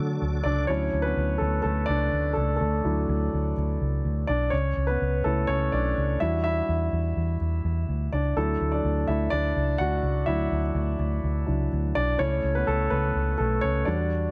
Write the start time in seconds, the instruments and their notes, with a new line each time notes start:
Already playing: tonewheel organ D3 D4 F#4 A4, grand piano F#3 A3 D4
0.00 fingered electric bass D3
0.22 fingered electric bass D2
0.44 fingered electric bass C#2, grand piano D4 D5
0.67 fingered electric bass D2, grand piano F#3 C#4 D4 E4 C#5
0.94 fingered electric bass D2
1.02 grand piano B3 B4
1.17 fingered electric bass D2
1.38 fingered electric bass D2, grand piano A3 A4
1.62 fingered electric bass D2, grand piano A3 A4
1.86 fingered electric bass C#2, grand piano D4 D5
2.13 fingered electric bass D2
2.33 fingered electric bass C#2, grand piano A3 A4
2.56 grand piano A3 A4
2.61 fingered electric bass D2
2.84 fingered electric bass D2, grand piano F#3 D4 E4
3.09 fingered electric bass D2
3.34 fingered electric bass D2
3.58 fingered electric bass D2
3.81 fingered electric bass C#2
4.05 fingered electric bass D2
4.27 fingered electric bass B1, grand piano D4 D5
4.50 fingered electric bass C#2, grand piano C#4 C#5
4.77 fingered electric bass C#2
4.87 grand piano B3 B4
5.02 fingered electric bass C#2
5.24 fingered electric bass C#2, grand piano A3 C#4 E4 A4
5.47 fingered electric bass C#2, grand piano C#4 C#5
5.72 fingered electric bass B1, grand piano D4 D5
5.98 fingered electric bass C#2
6.20 fingered electric bass E2, grand piano G3 D4 E4 F#4 E5
6.44 grand piano E4 E5
6.69 fingered electric bass E2
6.93 fingered electric bass E2
7.17 fingered electric bass E2
7.41 fingered electric bass E2
7.65 fingered electric bass E2
7.89 fingered electric bass D2
8.13 fingered electric bass C#2, grand piano D4 D5
8.37 fingered electric bass D2, grand piano F#3 A3 D4 E4 A4
8.61 fingered electric bass D2
8.72 grand piano D4 D5
8.85 fingered electric bass D2
9.08 fingered electric bass D2, grand piano E4 E5
9.30 fingered electric bass D2, grand piano D4 D5
9.56 fingered electric bass C#2
9.78 fingered electric bass D2, grand piano F#4 F#5
10.03 fingered electric bass C#2
10.26 fingered electric bass D2, grand piano F#3 D4 E4 E5
10.52 fingered electric bass D2
10.75 fingered electric bass D2
10.99 fingered electric bass D2
11.24 fingered electric bass D2
11.46 fingered electric bass C#2, grand piano F#3 D4 E4
11.73 fingered electric bass D2
11.95 fingered electric bass B1, grand piano D4 D5
12.18 fingered electric bass C#2, grand piano A3 C#4 E4 C#5
12.44 fingered electric bass C#2
12.55 grand piano B3 B4
12.67 fingered electric bass C#2, grand piano A3 A4
12.90 fingered electric bass C#2, grand piano B3 B4
13.15 fingered electric bass C#2
13.38 fingered electric bass B1, grand piano A3 A4
13.61 fingered electric bass C#2, grand piano C#4 C#5
13.85 fingered electric bass E2, grand piano G3 D4 F#4 D5